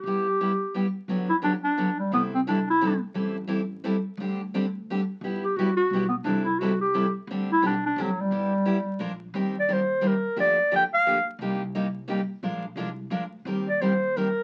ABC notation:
X:1
M:3/4
L:1/16
Q:"Swing" 1/4=175
K:G
V:1 name="Clarinet"
G8- G2 z2 | z2 E2 D2 D4 G,2 | B,2 C2 D2 E4 z2 | z12 |
z12 | z2 G2 F2 F4 B,2 | D2 E2 F2 G4 z2 | z2 E2 D2 D2 F,2 G,2- |
G,8- G,2 z2 | [K:Eb] z2 d2 c4 B4 | d4 g2 f4 z2 | z12 |
z12 | z2 d2 c4 B4 |]
V:2 name="Steel-string acoustic guitar"
[G,B,EG]2 z2 [G,B,EG] z3 [G,B,EG] z3 | [D,F,B,DG]2 z2 [D,F,B,DG] z3 [D,F,B,DG] z3 | [C,E,G,CEA]2 z2 [C,E,G,CEA] z3 [C,E,G,CEA] z3 | [E,G,CEA]2 z2 [E,G,CEA] z3 [E,G,CEA] z3 |
[D,G,CDG]2 z2 [D,G,CDG] z3 [D,G,CDG] z3 | [G,B,EG]2 z2 [G,B,EG] z3 [G,B,EG] z3 | [C,E,G,CEA]2 z2 [C,E,G,CEA] z3 [C,E,G,CEA] z3 | [D,G,CDG]2 z2 [D,G,CDG] z3 [D,G,CDG] z3 |
[G,B,EG]2 z2 [G,B,EG] z3 [=F,_A,D=F_B] z3 | [K:Eb] [E,G,CGB]2 z2 [E,G,CGB] z3 [E,G,CGB] z3 | [D,F,B,DG]2 z2 [D,F,B,DG] z3 [D,F,B,DG] z3 | [C,G,B,EG]2 z2 [C,G,B,EG] z3 [C,G,B,EG] z3 |
[F,A,DFB]2 z2 [F,A,DFB] z3 [F,A,DFB] z3 | [E,G,CGB]2 z2 [E,G,CGB] z3 [E,G,CGB] z3 |]
V:3 name="Upright bass" clef=bass
G,,,12 | G,,,12 | C,,12 | A,,,12 |
D,,12 | G,,,4 A,,,4 B,,,4 | C,,12 | D,,4 B,,,4 A,,,4 |
G,,,8 _B,,,4 | [K:Eb] E,,12 | D,,12 | C,,12 |
B,,,4 C,,4 D,,4 | E,,12 |]